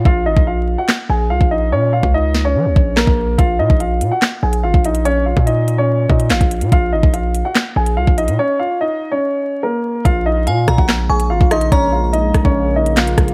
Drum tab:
HH |----------------|----------------|x---x-x----x--xx|x---x-x----xxxxx|
CP |--------x-------|------------x---|--------x-------|------------x---|
SD |--------o-------|------o-----o---|--------o-------|------------o---|
BD |o--o---------o--|---o------o--o--|o--o---------o--|---o------o--o--|

HH |x---x-x----x--xx|----------------|x---x-x----x--xx|x---x-x----xxxxx|
CP |--------x-------|----------------|--------x-------|------------x---|
SD |--------o-------|----------------|------r-o-----r-|------r-----o-r-|
BD |o--o---------o--|----------------|o-----oo-----o--|o-----oo------o-|